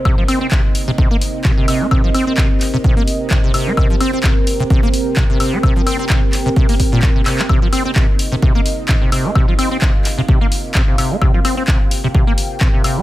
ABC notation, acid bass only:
X:1
M:4/4
L:1/16
Q:"Swing 16ths" 1/4=129
K:Cm
V:1 name="Acid bass" clef=bass
C, F, C C C, z2 C, C, B, z2 C, C, C, B, | C, F, C C C, z2 C, C, B, z2 C, C, C, B, | C, F, C C C, z2 C, C, B, z2 C, C, C, B, | C, F, C C C, z2 C, C, B, z B,, z C, C, C |
C, F, C C C, z2 C, C, B, z2 C, C, C, B, | C, F, C C C, z2 C, C, B, z2 C, C, C, B, | C, F, C C C, z2 C, C, B, z2 C, C, C, B, |]